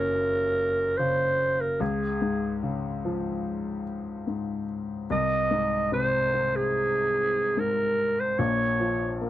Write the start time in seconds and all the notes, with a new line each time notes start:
Already playing: F#1 F#2 C#3 A#3 C#4 A#4
0.98 C#3 C5
1.61 A#4
1.80 C#2 G#4
2.22 G#2
2.63 C#3
3.05 F3
4.27 G#2
5.10 C2 D#5
5.51 G#2
5.92 C3 C5
6.34 C4
6.56 G#4
7.57 G#2 A#4
8.20 C5
8.39 A#1 A#2 C#5
8.80 F3
9.21 A#3